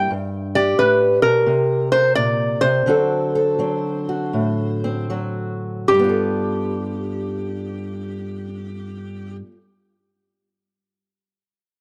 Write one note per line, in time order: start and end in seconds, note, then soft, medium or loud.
0.00 0.11 A#3 medium
0.00 0.11 G5 medium
0.11 0.78 G2 medium
0.55 1.92 G4 medium
0.55 0.79 D5 loud
0.78 1.23 A2 medium
0.78 1.22 B4 medium
1.22 1.46 B2 medium
1.22 1.87 A#4 medium
1.46 2.61 C3 medium
1.92 2.84 A#4 medium
1.92 2.14 C5 medium
2.15 2.62 A#2 medium
2.15 2.63 D5 loud
2.61 2.86 C3 medium
2.61 5.05 C5 medium
2.86 5.86 D3 medium
2.86 3.58 F#3 medium
2.86 3.58 C4 medium
2.86 4.08 F#4 medium
2.86 3.34 A4 medium
3.35 5.86 A4 medium
3.59 5.09 F#3 medium
3.59 4.83 C4 medium
4.09 5.09 F#4 medium
4.33 5.86 A2 medium
4.84 5.86 C4 medium
5.10 5.86 F#3 medium
5.10 5.86 F#4 medium
5.88 9.41 G2 medium
5.88 9.36 G4 medium
5.94 9.46 G3 medium
5.99 9.51 B3 medium
6.04 9.56 F4 medium
6.09 9.61 A4 medium